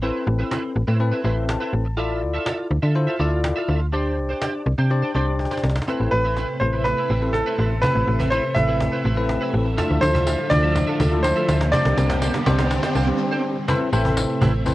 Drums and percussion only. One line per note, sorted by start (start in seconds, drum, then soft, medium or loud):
0.51 cajon slap loud
1.49 cajon slap loud
2.46 cajon slap loud
3.44 cajon slap loud
4.41 cajon slap loud
5.39 cajon slap medium
5.45 cajon slap medium
5.51 cajon slap medium
5.57 cajon slap medium
5.64 cajon slap medium
5.70 cajon slap medium
5.76 cajon slap medium
5.82 cajon slap medium
5.88 cajon slap medium
6.37 cajon slap medium
6.85 cajon slap medium
7.34 cajon slap medium
7.83 cajon bass loud
7.83 cajon slap medium
8.20 cajon bass medium
8.32 cajon slap medium
8.56 cajon bass medium
8.81 cajon bass medium
8.81 cajon slap medium
9.29 cajon slap medium
9.78 cajon bass loud
9.78 cajon slap medium
9.78 tambourine soft
10.03 cajon slap medium
10.03 tambourine medium
10.15 cajon bass medium
10.27 cajon slap medium
10.27 tambourine medium
10.39 cajon slap soft
10.51 cajon bass medium
10.51 cajon slap medium
10.51 tambourine soft
10.63 cajon slap soft
10.76 cajon bass medium
10.76 cajon slap medium
10.76 tambourine medium
10.88 cajon slap soft
11.00 cajon bass medium
11.00 cajon slap loud
11.00 tambourine soft
11.13 cajon slap soft
11.24 cajon slap loud
11.24 tambourine medium
11.49 cajon slap medium
11.49 tambourine medium
11.61 cajon slap loud
11.73 cajon bass loud
11.73 cajon slap loud
11.73 tambourine soft
11.85 cajon slap loud
11.97 cajon slap loud
11.97 tambourine medium
12.10 cajon bass medium
12.10 cajon slap loud
12.22 cajon slap loud
12.22 tambourine medium
12.34 cajon slap loud
12.46 cajon bass medium
12.46 cajon slap loud
12.58 cajon slap loud
12.71 cajon slap loud
12.71 tambourine soft
12.83 cajon slap loud
12.95 tambourine soft
13.08 cajon slap soft
13.68 cajon bass loud
13.68 tambourine soft
13.81 cajon slap soft
13.93 cajon slap soft
13.93 tambourine medium
14.05 cajon bass medium
14.17 cajon slap loud
14.17 tambourine loud
14.42 cajon bass medium
14.42 tambourine soft
14.66 cajon bass medium
14.66 cajon slap soft
14.66 tambourine medium